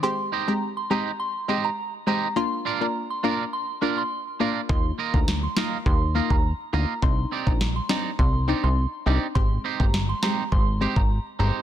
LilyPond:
<<
  \new Staff \with { instrumentName = "Synth bell" } { \time 4/4 \key aes \lydian \tempo 4 = 103 c'''16 r8 bes''16 r16 c'''16 bes''16 r16 c'''16 r8 bes''16 r8 bes''16 r16 | c'''16 r8 bes''16 r16 c'''16 bes''16 r16 c'''16 r8 c'''16 r4 | c'''16 r8 bes''16 r16 c'''16 bes''16 r16 c'''16 r8 bes''16 r8 bes''16 r16 | c'''16 r8 bes''16 r16 c'''16 bes''16 r16 c'''16 r8 c'''16 r4 |
c'''16 r8 bes''16 r16 c'''16 bes''16 r16 c'''16 r8 bes''16 r8 bes''16 r16 | }
  \new Staff \with { instrumentName = "Clean electric guitar" } { \time 4/4 \key aes \lydian r8 <ees' g' c'' ees''>8 r8 <ees' g' c'' ees''>8 r8 <ees' g' c'' ees''>8 r8 <ees' g' c'' ees''>8 | r8 <d' f' bes' d''>8 r8 <d' f' bes' d''>8 r8 <d' f' bes' d''>8 r8 <d' f' bes' d''>8 | r8 <bes f' bes' ees''>8 r8 <bes f' bes' ees''>8 r8 <bes f' bes' ees''>8 r8 <bes f' bes' ees''>8 | r8 <c' ees' g' d''>8 r8 <c' ees' g' d''>8 r8 <c' ees' g' d''>8 r8 <c' ees' g' d''>8 |
r8 <c' ees' g' c''>8 r8 <c' ees' g' c''>8 r8 <c' ees' g' c''>8 r8 <c' ees' g' c''>8 | }
  \new Staff \with { instrumentName = "Synth pluck" } { \time 4/4 \key aes \lydian <aes c' g'>8. <aes c' g'>16 r8 <aes c' g'>16 r8. <aes c' g'>16 r8. <aes c' g'>8 | <bes d' f'>8. <bes d' f'>16 r8 <bes d' f'>16 r8. <bes d' f'>16 r8. <bes d' f'>8 | <bes ees' f'>8. <bes ees' f'>16 r8 <bes ees' f'>16 r8. <bes ees' f'>16 r8. <bes ees' f'>8 | <c' d' ees'>8. <c' d' ees'>16 r8 <c' d' ees'>16 r8. <c' d' ees'>16 r8. <c' d' ees'>8 |
<aes c' g'>8. <aes c' g'>16 r8 <aes c' g'>16 r8. <aes c' g'>16 r8. <aes c' g'>8 | }
  \new Staff \with { instrumentName = "Analog synth bass" } { \clef bass \time 4/4 \key aes \lydian r1 | r1 | ees,8 r16 d,8. r8 ees,8. ees,8 r16 d,16 r16 | c,8 r16 bes,,8. r8 c,8. c,8 r16 c,16 r16 |
aes,,8 r16 g,,8. r8 aes,,8. aes,,8 r16 g,,16 r16 | }
  \new DrumStaff \with { instrumentName = "Drums" } \drummode { \time 4/4 r4 r4 r4 r4 | r4 r4 r4 r4 | bd8. bd16 sn8 sn8 bd8. bd16 r4 | bd8. bd16 sn8 sn8 bd4 r4 |
bd8. bd16 sn8 sn8 bd8. bd16 r4 | }
>>